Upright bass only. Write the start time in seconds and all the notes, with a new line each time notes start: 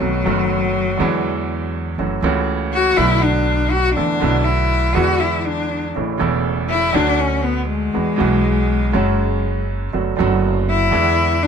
0.01 B1
0.27 F#1
1.00 E2
1.98 F#1
2.22 C#2
2.98 B1
3.97 E2
4.22 B1
4.96 E2
5.97 A1
6.21 E1
6.96 D2
7.96 E2
8.20 B1
8.95 F#1
9.94 F#1
10.20 F#1
10.94 E2